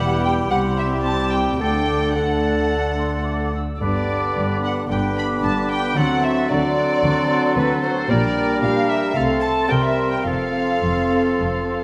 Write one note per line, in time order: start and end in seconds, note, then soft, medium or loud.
0.00 0.48 E1 medium
0.00 0.48 E2 soft
0.00 0.47 G3 medium
0.00 0.47 B3 medium
0.00 0.49 B3 medium
0.00 0.48 E4 medium
0.00 0.47 G4 medium
0.00 0.48 G4 soft
0.00 1.57 G4 medium
0.00 0.24 F#5 medium
0.00 0.47 B5 medium
0.23 0.50 G5 medium
0.23 0.32 G5 medium
0.50 1.58 C2 soft
0.50 1.59 C2 medium
0.50 1.62 G3 medium
0.50 1.61 C4 soft
0.50 1.43 E4 medium
0.50 1.58 G4 soft
0.50 1.62 G4 medium
0.50 0.78 F#5 medium
0.50 0.59 F#5 medium
0.50 1.38 C6 medium
0.77 1.05 E5 medium
0.77 0.86 E5 medium
1.03 1.31 A5 medium
1.03 1.32 A5 medium
1.31 1.58 G5 soft
1.31 1.58 G5 medium
1.59 3.58 D2 soft
1.59 2.15 D3 soft
1.59 3.54 A3 soft
1.59 2.15 A3 soft
1.59 2.15 D4 soft
1.59 2.16 D4 soft
1.59 3.54 A4 soft
1.59 2.15 A4 soft
1.59 2.14 G5 medium
1.59 2.15 D6 soft
2.15 3.52 D3 soft
2.15 3.59 A3 soft
2.15 3.60 D4 soft
2.15 3.53 D4 soft
2.15 3.52 A4 soft
2.15 3.54 F#5 soft
2.15 2.96 A5 soft
2.99 3.26 C6 soft
3.27 3.55 D6 soft
3.56 3.82 E6 soft
3.81 4.28 G1 soft
3.81 4.27 G2 soft
3.81 4.86 D3 soft
3.81 4.08 B3 soft
3.81 4.86 B3 soft
3.81 4.08 D4 soft
3.81 4.86 D4 soft
3.81 4.86 G4 soft
3.81 4.86 B4 soft
3.81 4.59 D5 medium
3.81 4.86 D6 soft
4.09 4.35 B3 soft
4.09 4.36 D4 soft
4.36 4.81 G1 soft
4.36 4.82 G2 soft
4.36 4.62 B3 soft
4.36 4.62 D4 soft
4.63 4.89 B3 soft
4.63 4.89 D4 soft
4.63 4.90 F#5 soft
4.63 4.72 F#5 medium
4.89 5.35 G1 medium
4.89 5.35 G2 medium
4.89 5.98 D3 soft
4.89 5.94 B3 soft
4.89 5.16 B3 soft
4.89 5.94 D4 soft
4.89 5.15 D4 soft
4.89 5.95 G4 soft
4.89 5.98 B4 soft
4.89 5.16 G5 soft
4.89 5.00 G5 medium
4.89 5.95 D6 soft
5.17 5.42 B3 soft
5.17 5.42 D4 soft
5.17 5.44 B5 medium
5.17 5.25 B5 medium
5.43 5.88 G1 medium
5.43 5.88 G2 medium
5.43 5.69 B3 soft
5.43 5.69 D4 soft
5.43 5.51 A5 soft
5.43 5.70 A5 medium
5.69 5.96 B3 soft
5.69 5.96 D4 soft
5.69 5.96 G5 medium
5.69 5.97 G5 medium
5.96 6.41 D2 medium
5.96 6.41 D3 medium
5.96 6.50 F#3 medium
5.96 6.22 C4 medium
5.96 6.49 C4 soft
5.96 6.49 D4 medium
5.96 6.22 F#4 medium
5.96 6.50 F#4 soft
5.96 6.50 A4 soft
5.96 6.23 F#5 medium
5.96 6.49 C6 soft
6.23 6.49 C4 soft
6.23 6.49 F#4 soft
6.23 6.50 E5 medium
6.49 6.94 D2 medium
6.49 6.95 D3 medium
6.49 8.06 F#3 medium
6.49 6.76 C4 soft
6.49 8.06 C4 medium
6.49 8.06 D4 medium
6.49 6.76 F#4 soft
6.49 8.07 F#4 medium
6.49 8.07 A4 medium
6.49 7.56 D5 medium
6.49 7.54 D5 medium
6.49 7.78 C6 medium
6.77 7.02 C4 soft
6.77 7.02 F#4 soft
7.02 7.47 D2 medium
7.02 7.48 D3 medium
7.02 7.28 C4 medium
7.02 7.28 F#4 medium
7.29 7.55 C4 soft
7.29 7.55 F#4 medium
7.56 8.00 D2 medium
7.56 8.00 D3 medium
7.56 7.81 C4 medium
7.56 7.81 F#4 medium
7.56 7.82 B4 medium
7.82 8.09 C4 medium
7.82 8.09 F#4 soft
7.82 7.90 C5 medium
7.82 8.09 C5 medium
8.08 8.54 A#1 medium
8.08 8.54 A#2 medium
8.08 9.14 G3 medium
8.08 9.14 A#3 medium
8.08 8.35 A#3 medium
8.08 9.14 D4 medium
8.08 9.14 G4 medium
8.08 8.35 G4 medium
8.08 9.19 A#4 medium
8.08 8.62 D5 medium
8.08 8.61 D5 medium
8.08 9.14 A#5 medium
8.36 8.61 A#3 soft
8.36 8.61 G4 soft
8.62 9.08 A#1 medium
8.62 9.07 A#2 medium
8.62 8.88 A#3 soft
8.62 8.88 G4 soft
8.62 8.89 F5 medium
8.89 9.15 A#3 soft
8.89 9.15 G4 soft
8.89 9.15 E5 medium
8.89 9.16 E5 medium
9.14 9.62 C2 medium
9.14 9.61 C3 medium
9.14 9.41 A3 soft
9.14 9.71 A3 soft
9.14 9.69 C4 medium
9.14 9.68 C4 medium
9.14 9.41 A4 soft
9.14 9.70 A4 soft
9.14 9.73 A4 soft
9.14 9.22 F5 medium
9.14 9.43 F5 medium
9.14 9.68 C6 medium
9.41 9.69 A3 soft
9.41 9.69 A4 soft
9.41 9.49 A5 medium
9.41 9.69 A5 medium
9.68 10.17 C2 medium
9.68 10.17 C3 medium
9.68 10.24 G3 soft
9.68 9.94 C4 soft
9.68 10.23 C4 soft
9.68 10.09 C4 soft
9.68 9.94 A#4 soft
9.68 10.24 A#4 soft
9.68 10.29 A#4 soft
9.68 9.74 G5 medium
9.68 9.83 G5 medium
9.68 10.24 C6 medium
9.83 10.11 E5 medium
9.83 10.11 E5 soft
9.95 10.23 C4 soft
9.95 10.24 A#4 soft
10.10 10.25 G5 soft
10.10 10.17 G5 soft
10.24 10.72 F1 medium
10.24 10.72 F2 medium
10.24 11.84 F3 soft
10.24 10.51 C4 soft
10.24 11.84 C4 soft
10.24 10.51 A4 soft
10.24 11.84 A4 soft
10.24 11.84 F5 medium
10.24 11.84 C6 soft
10.52 10.80 C4 soft
10.52 10.80 A4 soft
10.81 11.29 F1 soft
10.81 11.29 F2 soft
10.81 11.08 C4 soft
10.81 11.09 A4 soft
11.10 11.36 C4 soft
11.10 11.36 A4 soft
11.37 11.84 F1 soft
11.37 11.84 F2 soft
11.37 11.64 C4 soft
11.37 11.63 A4 soft
11.65 11.84 C4 soft
11.65 11.84 A4 soft